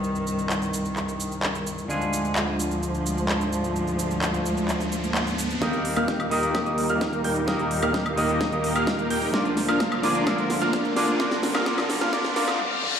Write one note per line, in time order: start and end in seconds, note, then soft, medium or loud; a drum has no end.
0.00 1.86 C2 medium
0.00 1.86 G2 medium
0.00 1.86 C3 medium
0.00 1.86 D#3 medium
0.00 1.86 G3 medium
0.00 1.87 C4 medium
0.00 1.87 D#4 medium
0.00 1.87 G4 medium
0.00 shaker soft
0.15 shaker soft
0.27 shaker medium
0.39 shaker soft
0.50 clap loud
0.50 shaker soft
0.62 shaker soft
0.74 shaker medium
0.85 shaker soft
0.96 clap medium
0.96 shaker soft
1.09 shaker soft
1.20 shaker medium
1.32 shaker soft
1.43 clap loud
1.43 shaker soft
1.55 shaker soft
1.67 shaker medium
1.78 shaker soft
1.88 5.58 D2 medium
1.88 5.58 G#2 medium
1.88 5.58 D3 medium
1.88 5.58 F3 medium
1.88 5.59 G#3 medium
1.88 5.59 D4 medium
1.88 5.59 F4 medium
1.88 5.59 G#4 medium
1.88 riser medium
1.88 shaker soft
2.02 shaker soft
2.13 shaker medium
2.25 shaker soft
2.36 clap loud
2.36 shaker soft
2.60 shaker medium
2.71 shaker soft
2.83 shaker soft
2.95 shaker soft
3.06 shaker medium
3.18 shaker soft
3.29 clap loud
3.29 shaker soft
3.41 shaker soft
3.53 shaker medium
3.64 shaker soft
3.76 shaker soft
3.87 shaker soft
3.99 shaker medium
4.11 shaker soft
4.22 clap loud
4.22 shaker soft
4.34 shaker soft
4.46 shaker medium
4.57 shaker soft
4.68 clap medium
4.68 shaker soft
4.81 shaker soft
4.92 shaker medium
5.04 shaker soft
5.15 clap loud
5.15 shaker soft
5.27 shaker soft
5.39 shaker medium
5.50 shaker soft
5.60 9.30 D#2 medium
5.60 9.30 A#2 medium
5.60 6.28 D#3 medium
5.60 9.30 G3 medium
5.60 6.28 A#3 medium
5.60 5.79 A#3 medium
5.60 6.29 D#4 medium
5.60 5.79 D#4 medium
5.60 5.79 G4 medium
5.60 6.29 G4 medium
5.60 5.79 A#4 medium
5.60 6.29 A#4 loud
5.60 5.79 D#5 loud
5.60 5.79 D#6 medium
5.60 kick loud
5.60 snare soft
5.60 closed hi-hat medium
5.60 riser medium
5.73 closed hi-hat soft
5.85 open hi-hat loud
5.97 6.29 A#3 medium
5.97 6.29 D#4 medium
5.97 6.29 G4 medium
5.97 6.29 A#4 medium
5.97 6.29 F5 medium
5.97 6.29 F6 medium
5.97 closed hi-hat medium
5.97 high woodblock medium
6.08 kick loud
6.08 snare soft
6.08 closed hi-hat medium
6.20 closed hi-hat soft
6.20 high woodblock medium
6.30 7.44 D#3 medium
6.30 7.45 A#3 medium
6.30 6.59 A#3 medium
6.30 6.59 D#4 medium
6.30 7.45 D#4 medium
6.30 6.59 G4 medium
6.30 7.45 G4 medium
6.30 6.59 A#4 medium
6.30 7.46 A#4 loud
6.30 6.59 D#5 loud
6.30 6.59 D#6 loud
6.30 open hi-hat loud
6.43 closed hi-hat medium
6.55 kick loud
6.55 snare medium
6.55 closed hi-hat medium
6.55 high woodblock medium
6.66 6.87 A#3 medium
6.66 6.87 D#4 medium
6.66 6.87 G4 medium
6.66 6.87 A#4 medium
6.66 6.87 D#5 medium
6.66 6.87 D#6 medium
6.66 closed hi-hat soft
6.78 open hi-hat loud
6.90 7.22 A#3 medium
6.90 7.22 D#4 medium
6.90 7.22 G4 medium
6.90 7.22 A#4 medium
6.90 7.22 F5 loud
6.90 7.22 F6 medium
6.90 closed hi-hat medium
7.01 kick loud
7.01 snare medium
7.01 closed hi-hat medium
7.13 closed hi-hat soft
7.24 7.42 A#3 medium
7.24 7.42 D#4 medium
7.24 7.42 G4 medium
7.24 7.42 A#4 medium
7.24 7.42 G5 medium
7.24 7.42 G6 medium
7.24 open hi-hat loud
7.36 closed hi-hat medium
7.46 8.14 D#3 medium
7.46 8.14 A#3 medium
7.46 8.15 D#4 medium
7.46 7.65 D#4 medium
7.46 7.65 G4 medium
7.46 8.15 G4 medium
7.46 7.65 A#4 medium
7.46 8.15 A#4 loud
7.46 7.65 D#5 loud
7.46 7.65 D#6 medium
7.46 kick loud
7.46 snare medium
7.46 closed hi-hat soft
7.59 closed hi-hat soft
7.71 open hi-hat loud
7.83 8.15 A#3 medium
7.83 8.15 D#4 medium
7.83 8.15 G4 medium
7.83 8.15 A#4 medium
7.83 8.15 F5 medium
7.83 8.15 F6 medium
7.83 closed hi-hat medium
7.83 high woodblock medium
7.94 kick loud
7.94 snare medium
7.94 closed hi-hat soft
8.06 closed hi-hat soft
8.06 high woodblock medium
8.16 9.30 D#3 medium
8.16 9.31 A#3 medium
8.16 8.45 A#3 loud
8.16 9.31 D#4 medium
8.16 8.45 D#4 medium
8.16 8.45 G4 medium
8.16 9.31 G4 medium
8.16 8.45 A#4 medium
8.16 9.32 A#4 loud
8.16 8.45 D#5 loud
8.16 8.45 D#6 loud
8.16 open hi-hat loud
8.29 closed hi-hat medium
8.41 kick loud
8.41 snare medium
8.41 closed hi-hat medium
8.52 8.73 A#3 medium
8.52 8.73 D#4 medium
8.52 8.73 G4 medium
8.52 8.73 A#4 medium
8.52 8.73 D#5 medium
8.52 8.73 D#6 medium
8.52 closed hi-hat soft
8.64 open hi-hat loud
8.76 9.08 A#3 medium
8.76 9.08 D#4 medium
8.76 9.08 G4 medium
8.76 9.08 A#4 medium
8.76 9.08 F5 loud
8.76 9.08 F6 medium
8.76 closed hi-hat medium
8.76 high woodblock medium
8.87 kick loud
8.87 snare medium
8.87 closed hi-hat medium
8.99 closed hi-hat soft
9.10 9.28 A#3 medium
9.10 9.28 D#4 medium
9.10 9.28 G4 medium
9.10 9.28 A#4 medium
9.10 9.28 G5 medium
9.10 9.28 G6 medium
9.10 open hi-hat loud
9.22 open hi-hat medium
9.33 12.56 D2 medium
9.33 12.56 A#2 medium
9.33 10.00 D3 medium
9.33 11.18 F3 medium
9.33 10.00 A#3 medium
9.33 9.51 A#3 medium
9.33 9.51 D4 medium
9.33 10.01 D4 medium
9.33 9.51 F4 medium
9.33 10.01 F4 medium
9.33 9.51 A#4 medium
9.33 10.01 A#4 medium
9.33 9.51 D5 medium
9.33 9.51 D6 medium
9.33 kick loud
9.33 snare medium
9.45 closed hi-hat soft
9.57 snare medium
9.57 open hi-hat loud
9.69 10.01 A#3 medium
9.69 10.01 D4 medium
9.69 10.01 F4 medium
9.69 10.01 A#4 medium
9.69 10.01 F5 medium
9.69 10.01 F6 medium
9.69 closed hi-hat soft
9.69 high woodblock medium
9.80 kick loud
9.80 snare medium
9.80 closed hi-hat medium
9.92 closed hi-hat soft
9.92 high woodblock medium
10.02 10.24 D3 medium
10.02 10.25 A#3 medium
10.02 10.25 D4 medium
10.02 10.25 F4 medium
10.02 10.26 G#4 medium
10.02 10.25 A#4 medium
10.02 10.25 D5 loud
10.02 10.25 D6 loud
10.02 snare medium
10.02 open hi-hat loud
10.15 closed hi-hat medium
10.26 10.93 D3 medium
10.26 10.93 A#3 medium
10.26 10.44 A#3 medium
10.26 10.44 D4 medium
10.26 10.94 D4 medium
10.26 10.44 F4 medium
10.26 10.94 F4 medium
10.26 10.44 A#4 medium
10.26 10.94 A#4 loud
10.26 10.44 D5 medium
10.26 10.44 D6 medium
10.26 kick loud
10.26 snare medium
10.26 closed hi-hat soft
10.26 high woodblock medium
10.38 closed hi-hat soft
10.50 snare medium
10.50 open hi-hat loud
10.62 10.94 A#3 medium
10.62 10.94 D4 medium
10.62 10.94 F4 medium
10.62 10.94 A#4 medium
10.62 10.94 F5 medium
10.62 10.94 F6 medium
10.62 closed hi-hat soft
10.73 kick loud
10.73 snare medium
10.73 closed hi-hat medium
10.85 closed hi-hat soft
10.95 11.17 D3 medium
10.95 11.18 A#3 medium
10.95 11.18 D4 medium
10.95 11.18 F4 medium
10.95 11.19 G#4 medium
10.95 11.18 A#4 medium
10.95 11.18 D5 loud
10.95 11.18 D6 loud
10.95 snare medium
10.95 open hi-hat loud
11.08 closed hi-hat medium
11.19 11.64 D3 medium
11.19 12.58 G3 medium
11.19 11.64 A#3 medium
11.19 11.37 A#3 medium
11.19 11.37 D4 medium
11.19 11.64 D4 medium
11.19 11.37 F4 medium
11.19 11.65 F4 medium
11.19 11.37 A#4 medium
11.19 11.65 A#4 loud
11.19 11.37 D5 medium
11.19 11.37 D6 loud
11.19 kick loud
11.19 snare medium
11.19 closed hi-hat medium
11.31 snare medium
11.31 closed hi-hat soft
11.43 snare loud
11.43 open hi-hat loud
11.55 11.64 A#3 medium
11.55 11.64 D4 medium
11.55 11.64 F4 medium
11.55 11.64 A#4 medium
11.55 11.64 F5 medium
11.55 11.64 F6 medium
11.55 snare medium
11.55 closed hi-hat medium
11.55 high woodblock medium
11.65 12.10 D3 loud
11.65 12.11 A#3 medium
11.65 11.83 A#3 medium
11.65 11.83 D4 medium
11.65 12.11 D4 medium
11.65 11.83 F4 medium
11.65 12.11 F4 medium
11.65 12.12 A#4 loud
11.65 11.83 D5 loud
11.65 11.83 D6 medium
11.65 kick loud
11.65 snare loud
11.65 closed hi-hat soft
11.78 snare medium
11.78 closed hi-hat soft
11.78 high woodblock medium
11.90 snare medium
11.90 open hi-hat loud
12.01 12.11 A#3 medium
12.01 12.11 D4 medium
12.01 12.11 F4 medium
12.01 12.11 A#4 medium
12.01 12.11 F5 medium
12.01 12.11 F6 medium
12.01 snare medium
12.12 12.34 D3 medium
12.12 12.34 A#3 medium
12.12 12.30 A#3 medium
12.12 12.30 D4 medium
12.12 12.34 D4 medium
12.12 12.30 F4 medium
12.12 12.35 F4 medium
12.12 12.30 A#4 medium
12.12 12.35 A#4 loud
12.12 12.30 D5 loud
12.12 12.30 D6 loud
12.12 kick loud
12.12 snare loud
12.12 closed hi-hat medium
12.12 reverse cymbal medium
12.24 snare medium
12.24 closed hi-hat soft
12.35 12.57 D3 loud
12.35 12.57 A#3 medium
12.35 12.53 A#3 medium
12.35 12.53 D4 medium
12.35 12.58 D4 medium
12.35 12.53 F4 medium
12.35 12.58 F4 medium
12.35 12.53 A#4 medium
12.35 12.58 A#4 loud
12.35 12.53 D5 loud
12.35 12.53 D6 loud
12.35 snare loud
12.35 open hi-hat loud
12.48 snare loud
12.48 closed hi-hat medium
12.48 high woodblock medium
12.59 high tom medium
12.71 high tom medium
12.83 mid tom medium
12.94 mid tom medium